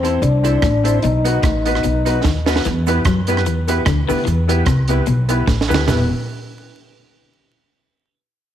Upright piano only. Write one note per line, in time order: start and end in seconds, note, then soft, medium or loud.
0.03 0.16 C4 medium
0.03 0.16 E4 medium
0.03 0.17 A4 medium
0.03 0.17 C5 loud
0.21 0.26 A4 soft
0.21 0.26 C5 soft
0.43 0.57 C4 medium
0.43 0.57 E4 medium
0.43 0.57 A4 medium
0.43 0.58 C5 loud
0.83 0.97 C4 loud
0.83 0.97 E4 medium
0.83 0.98 A4 medium
0.83 0.98 C5 loud
1.24 1.38 B3 medium
1.24 1.38 D#4 medium
1.24 1.38 F#4 medium
1.24 1.39 B4 loud
1.43 1.48 F#4 soft
1.43 1.48 B4 soft
1.66 1.79 B3 medium
1.66 1.79 D#4 medium
1.66 1.79 F#4 medium
1.66 1.79 B4 loud
1.84 1.88 F#4 soft
1.84 1.88 B4 soft
2.06 2.19 B3 medium
2.06 2.19 D#4 medium
2.06 2.19 F#4 medium
2.06 2.20 B4 loud
2.46 2.59 B3 medium
2.46 2.59 D#4 medium
2.46 2.60 F#4 medium
2.46 2.60 B4 loud
2.87 3.00 B3 medium
2.87 3.00 E4 medium
2.87 3.00 G4 medium
2.87 3.01 B4 loud
3.05 3.10 G4 soft
3.05 3.10 B4 soft
3.27 3.40 B3 medium
3.27 3.41 E4 medium
3.27 3.41 G4 medium
3.27 3.41 B4 loud
3.46 3.50 G4 soft
3.46 3.50 B4 soft
3.67 3.81 B3 medium
3.67 3.81 E4 medium
3.67 3.81 G4 medium
3.67 3.81 B4 loud
4.08 4.21 B3 loud
4.08 4.21 E4 loud
4.08 4.21 G4 medium
4.08 4.22 B4 loud
4.47 4.61 B3 loud
4.47 4.61 E4 medium
4.47 4.62 G4 medium
4.47 4.62 B4 loud
4.66 4.71 G4 soft
4.66 4.71 B4 soft
4.88 5.02 B3 medium
4.88 5.02 E4 medium
4.88 5.02 G4 medium
4.88 5.02 B4 loud
5.29 5.42 B3 medium
5.29 5.42 E4 medium
5.29 5.43 G4 medium
5.29 5.43 B4 loud
5.69 5.82 B3 medium
5.69 5.83 E4 medium
5.69 5.83 G4 medium
5.69 5.83 B4 loud
5.87 6.04 B3 medium
5.87 6.04 E4 medium
5.87 6.05 G4 medium
5.87 6.05 B4 loud